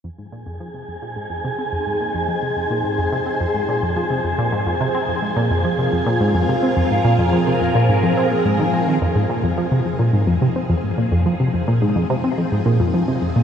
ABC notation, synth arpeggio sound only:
X:1
M:4/4
L:1/16
Q:1/4=107
K:Fm
V:1 name="Synth arpeggio sound" clef=bass
F,, A,, B,, F,, F, C, F,, B,, A,, F,, C, C F,, A,, B,, F,, | F, C, F,, B,, A,, F,, C, C F,, A,, B,, F,, F, C, F,, B,, | A,, F,, C, C F,, A,, B,, F,, F, C, F,, B,, A,, F,, C, C | F,, A,, B,, F,, F, C, F,, B,, A,, F,, C B,, A,, E, F, E, |
F,, A,, B,, F,, F, C, F,, B,, A,, F,, C, C F,, A,, B,, F,, | F, C, F,, B,, A,, F,, C, C F,, A,, B,, F,, F, C, F,, B,, |]